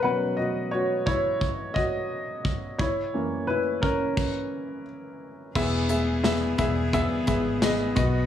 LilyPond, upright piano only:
<<
  \new Staff \with { instrumentName = "Upright piano" } { \time 4/4 \key e \lydian \tempo 4 = 87 <b' fis''>8 <fis' dis''>8 <fis' cis''>8 <e' cis''>4 <fis' dis''>4. | <e' cis''>4 <e' b'>8 <cis' ais'>4. r4 | <b gis' e''>8 <b gis' e''>8 <b gis' e''>8 <b gis' e''>8 <b gis' e''>8 <b gis' e''>8 <b gis' dis''>8 <b fis' dis''>8 | }
  \new Staff \with { instrumentName = "Upright piano" } { \clef bass \time 4/4 \key e \lydian <b, fis cis'>4. r2 r8 | r8 <fis, e ais>8 r2. | e4. r2 b,8 | }
>>